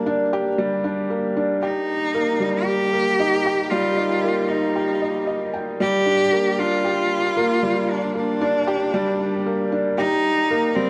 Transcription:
0.00 0.58 G3 medium
0.00 1.10 A#3 loud
0.00 0.06 D4 medium
0.00 0.33 G4 medium
0.06 0.21 D4 loud
0.33 0.48 G4 loud
0.58 0.83 G3 medium
0.84 0.99 D4 medium
1.10 1.35 A#3 medium
1.37 1.61 D4 medium
1.62 2.67 D#4 loud
1.62 1.87 G4 medium
2.14 2.29 A#3 medium
2.40 2.55 G3 medium
2.65 3.72 G4 loud
2.93 3.18 A#3 medium
3.20 3.34 D#4 loud
3.46 3.60 G4 loud
3.70 3.96 G3 loud
3.70 4.49 F4 loud
3.97 4.12 D#4 medium
4.24 4.48 A#3 medium
4.48 5.53 D#4 medium
4.48 4.75 D#4 medium
4.76 5.00 G4 medium
5.02 5.25 D#5 medium
5.27 5.52 D#5 medium
5.54 5.79 G5 medium
5.80 6.05 G3 loud
5.80 6.61 G4 loud
6.06 6.21 D4 medium
6.32 6.57 A#3 medium
6.59 6.83 D4 medium
6.59 7.92 F4 loud
6.85 7.09 G4 medium
7.37 7.52 A#3 loud
7.63 7.78 G3 medium
7.91 8.16 D4 loud
8.15 8.40 A#3 medium
8.15 9.68 D4 loud
8.41 8.56 D4 loud
8.67 8.82 G4 loud
8.94 9.18 G3 loud
9.20 9.34 D4 medium
9.46 9.70 A#3 medium
9.72 9.97 D4 medium
9.97 10.77 D#4 loud
9.97 10.23 G4 medium
10.51 10.65 A#3 loud
10.75 10.90 G3 medium
10.75 10.90 C4 loud

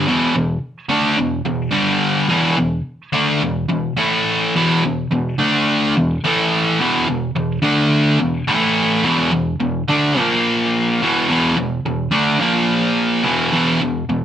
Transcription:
0.07 0.34 E2 medium
0.07 0.34 B2 loud
0.07 0.35 E3 loud
0.35 0.58 E2 medium
0.35 0.58 B2 medium
0.89 1.17 D3 medium
0.89 1.18 A3 medium
0.89 1.18 D4 loud
1.17 1.41 E2 medium
1.17 1.41 B2 medium
1.45 1.69 E2 medium
1.45 1.69 B2 medium
1.71 2.28 G2 loud
1.71 2.29 D3 loud
1.71 2.29 G3 loud
2.29 2.56 E2 medium
2.29 2.56 B2 loud
2.29 2.58 E3 loud
2.57 2.81 E2 medium
2.57 2.81 B2 medium
3.13 3.41 D3 loud
3.13 3.42 A3 loud
3.13 3.42 D4 loud
3.42 3.65 E2 medium
3.42 3.65 B2 medium
3.69 3.92 E2 medium
3.69 3.93 B2 medium
3.97 4.53 A2 loud
3.97 4.53 E3 loud
3.97 4.54 A3 loud
4.55 4.82 E2 medium
4.55 4.83 B2 loud
4.55 4.83 E3 loud
4.85 5.06 E2 medium
4.85 5.06 B2 medium
5.12 5.34 E2 medium
5.12 5.34 B2 medium
5.39 5.94 D3 medium
5.39 5.95 A3 loud
5.39 5.95 D4 medium
5.97 6.18 E2 medium
5.97 6.19 B2 medium
6.24 6.79 A2 medium
6.24 6.79 E3 loud
6.24 6.80 A3 loud
6.79 7.06 E2 medium
6.79 7.07 B2 loud
6.79 7.07 E3 loud
7.07 7.30 E2 medium
7.07 7.30 B2 medium
7.36 7.58 E2 medium
7.36 7.58 B2 medium
7.62 8.18 D3 medium
7.62 8.19 A3 medium
7.62 8.19 D4 loud
8.20 8.42 E2 medium
8.20 8.42 B2 medium
8.48 9.03 A2 loud
8.48 9.03 E3 loud
8.48 9.03 A3 loud
9.03 9.31 E2 medium
9.03 9.31 B2 loud
9.03 9.31 E3 loud
9.32 9.54 E2 medium
9.32 9.55 B2 medium
9.60 9.83 E2 medium
9.60 9.83 B2 medium
9.89 10.17 D3 medium
9.89 10.18 A3 medium
9.89 10.19 D4 loud
10.17 11.00 A#2 loud
10.17 11.00 F3 loud
10.17 11.01 A#3 loud
11.02 11.28 E2 medium
11.02 11.29 B2 medium
11.02 11.29 E3 medium
11.29 11.56 E2 medium
11.29 11.56 B2 loud
11.29 11.57 E3 loud
11.57 11.79 E2 medium
11.57 11.79 B2 medium
11.86 12.08 E2 medium
11.86 12.08 B2 medium
12.11 12.39 D3 medium
12.11 12.39 A3 medium
12.11 12.40 D4 medium
12.39 13.23 A#2 medium
12.39 13.24 F3 loud
12.39 13.24 A#3 loud
13.23 13.50 E2 medium
13.23 13.51 B2 medium
13.23 13.52 E3 medium
13.52 13.80 E2 medium
13.52 13.80 B2 loud
13.52 13.80 E3 loud
13.81 14.03 E2 medium
13.81 14.04 B2 medium
14.09 14.25 E2 medium
14.09 14.25 B2 medium

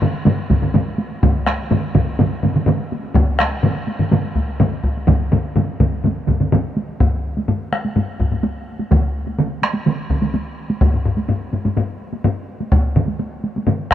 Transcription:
0.02 taiko low-mid medium
0.02 taiko mid medium
0.02 taiko high medium
0.14 taiko high soft
0.25 taiko low-mid medium
0.25 taiko mid loud
0.25 taiko high medium
0.38 taiko high soft
0.50 taiko medium
0.50 taiko low-mid medium
0.50 taiko mid medium
0.50 taiko high medium
0.62 taiko low-mid medium
0.62 taiko mid medium
0.62 taiko high soft
0.74 taiko low-mid loud
0.74 taiko mid loud
0.74 taiko high medium
0.87 taiko high soft
0.98 taiko high medium
1.11 taiko high soft
1.23 taiko medium
1.23 taiko low-mid medium
1.23 taiko mid loud
1.23 taiko high medium
1.35 taiko high soft
1.47 taiko rim medium
1.47 taiko high medium
1.58 taiko high soft
1.71 taiko low-mid loud
1.71 taiko mid medium
1.71 taiko high medium
1.95 taiko medium
1.95 taiko low-mid medium
1.95 taiko mid medium
1.95 taiko high medium
2.07 taiko high soft
2.19 taiko low-mid loud
2.19 taiko mid loud
2.19 taiko high medium
2.31 taiko high soft
2.43 taiko low-mid medium
2.43 taiko mid medium
2.43 taiko high medium
2.54 taiko low-mid medium
2.54 taiko mid medium
2.54 taiko high soft
2.66 taiko low-mid loud
2.66 taiko mid loud
2.66 taiko high medium
2.80 taiko high soft
2.92 taiko high medium
3.05 taiko high soft
3.14 taiko loud
3.14 taiko low-mid loud
3.14 taiko mid loud
3.14 taiko high medium
3.29 taiko high soft
3.39 taiko rim medium
3.39 taiko high soft
3.40 taiko rim medium
3.51 taiko high soft
3.63 taiko low-mid loud
3.63 taiko mid loud
3.63 taiko high medium
3.88 taiko high soft
3.99 taiko low-mid medium
3.99 taiko mid medium
3.99 taiko high soft
4.11 taiko low-mid medium
4.11 taiko mid loud
4.11 taiko high medium
4.24 taiko high soft
4.35 taiko medium
4.35 taiko high medium
4.49 taiko high soft
4.60 taiko low-mid loud
4.60 taiko mid loud
4.60 taiko high medium
4.73 taiko high soft
4.83 taiko medium
4.97 taiko high soft
5.07 taiko medium
5.07 taiko low-mid loud
5.07 taiko mid loud
5.07 taiko high medium
5.21 taiko high soft
5.32 taiko low-mid loud
5.32 taiko mid medium
5.32 taiko high medium
5.45 taiko high soft
5.56 taiko low-mid medium
5.56 taiko mid medium
5.56 taiko high medium
5.80 taiko medium
5.80 taiko low-mid loud
5.80 taiko mid loud
5.80 taiko high medium
5.93 taiko high soft
6.04 taiko low-mid medium
6.04 taiko mid medium
6.04 taiko high medium
6.17 taiko high soft
6.28 taiko medium
6.28 taiko low-mid medium
6.28 taiko mid medium
6.28 taiko high medium
6.40 taiko low-mid medium
6.40 taiko mid medium
6.40 taiko high soft
6.52 taiko low-mid loud
6.52 taiko mid medium
6.52 taiko high medium
6.64 taiko high soft
6.77 taiko high medium
6.89 taiko high soft
7.00 taiko medium
7.00 taiko low-mid medium
7.00 taiko high medium
7.37 taiko high medium
7.48 taiko low-mid medium
7.48 taiko high medium
7.72 taiko rim medium
7.72 taiko high soft
7.85 taiko high soft
7.96 taiko low-mid medium
7.96 taiko high medium
8.20 taiko medium
8.20 taiko low-mid medium
8.32 taiko low-mid medium
8.32 taiko high soft
8.44 taiko high medium
8.80 taiko high medium
8.91 taiko medium
8.91 taiko mid medium
8.91 taiko high medium
9.27 taiko high soft
9.39 taiko mid medium
9.39 taiko high medium
9.62 taiko rim medium
9.62 taiko high soft
9.74 taiko high medium
9.86 taiko mid medium
9.86 taiko high medium
10.10 taiko medium
10.10 taiko mid medium
10.22 taiko mid medium
10.22 taiko high medium
10.34 taiko high medium
10.70 taiko high medium
10.81 taiko medium
10.81 taiko low-mid medium
10.81 taiko high medium
10.94 taiko low-mid medium
11.05 taiko low-mid medium
11.17 taiko high medium
11.29 taiko low-mid medium
11.29 taiko high medium
11.53 taiko low-mid medium
11.53 taiko high soft
11.65 taiko low-mid medium
11.65 taiko high medium
11.77 taiko low-mid medium
11.77 taiko high medium
12.13 taiko high medium
12.24 taiko low-mid loud
12.24 taiko high medium
12.60 taiko high medium
12.72 taiko loud
12.72 taiko high medium
12.96 taiko low-mid loud
12.96 taiko mid medium
13.08 taiko high soft
13.20 taiko high medium
13.44 taiko high soft
13.56 taiko high medium
13.67 taiko low-mid loud
13.67 taiko mid medium
13.67 taiko high medium
13.91 taiko rim medium
13.91 taiko medium

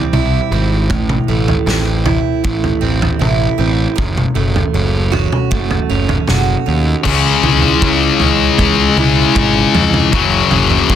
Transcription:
0.00 0.90 G3 medium
0.00 0.51 C4 medium
0.00 0.12 E4 medium
0.13 0.39 C2 medium
0.13 0.90 E4 medium
0.13 mid tom medium
0.51 0.91 G#1 medium
0.51 0.91 C4 medium
0.90 1.17 A1 medium
0.90 2.82 A2 medium
0.90 kick loud
0.90 floor tom medium
1.09 mid tom medium
1.28 1.54 A1 medium
1.28 2.43 A3 medium
1.48 floor tom medium
1.66 2.19 A1 medium
1.66 2.80 C4 medium
1.66 snare medium
2.05 3.18 E4 medium
2.05 floor tom medium
2.05 mid tom medium
2.44 2.70 A1 medium
2.44 3.98 A3 medium
2.44 kick loud
2.64 floor tom medium
2.81 3.08 A1 medium
2.81 3.57 C4 medium
3.02 floor tom medium
3.19 3.47 A1 medium
3.19 3.97 E4 medium
3.19 mid tom medium
3.58 3.85 A1 medium
3.58 3.97 C4 medium
3.96 4.24 F#1 medium
3.96 5.89 F#2 medium
3.96 kick loud
3.96 floor tom medium
4.17 mid tom medium
4.35 4.62 F#1 medium
4.35 5.50 A3 medium
4.56 floor tom medium
4.74 5.26 F#1 medium
4.74 5.88 C#4 medium
5.12 6.27 F#4 medium
5.12 floor tom medium
5.32 mid tom medium
5.51 5.78 F#1 medium
5.51 7.05 A3 medium
5.51 kick loud
5.71 floor tom medium
5.89 6.16 F#1 medium
5.89 6.65 C#4 medium
6.09 floor tom medium
6.28 6.55 F#1 medium
6.28 7.05 F#4 medium
6.28 snare medium
6.28 mid tom medium
6.66 6.93 D#2 medium
6.66 7.05 C#4 medium
7.04 7.33 C#2 medium
7.04 10.10 C#3 medium
7.04 8.98 C#3 medium
7.04 10.11 G#3 loud
7.04 10.57 C#4 medium
7.04 kick loud
7.04 floor tom medium
7.04 crash loud
7.43 7.71 C#2 medium
7.43 9.36 E3 medium
7.43 floor tom medium
7.43 mid tom medium
7.62 floor tom medium
7.82 8.10 C#2 medium
7.82 8.59 G#3 medium
7.82 kick loud
8.20 8.48 C#2 medium
8.20 10.95 C#4 medium
8.20 floor tom medium
8.58 8.86 C#2 medium
8.58 9.35 G#3 medium
8.58 kick loud
8.58 floor tom medium
8.97 9.25 C#2 medium
8.97 10.13 E4 medium
8.97 mid tom medium
9.35 9.63 G#1 medium
9.35 10.13 G#3 medium
9.35 kick loud
9.35 mid tom medium
9.75 10.02 F2 medium
9.75 10.13 E3 medium
9.75 floor tom medium
9.94 floor tom medium
9.94 mid tom medium
10.12 10.40 F#1 medium
10.12 10.95 F#2 medium
10.12 10.95 C#3 loud
10.12 10.95 F#3 medium
10.12 kick loud
10.12 floor tom medium
10.51 10.79 F#1 medium
10.51 10.95 C#3 medium
10.51 floor tom medium
10.51 mid tom medium
10.70 floor tom medium
10.89 10.95 F#2 medium
10.89 10.95 A#3 medium
10.89 kick loud

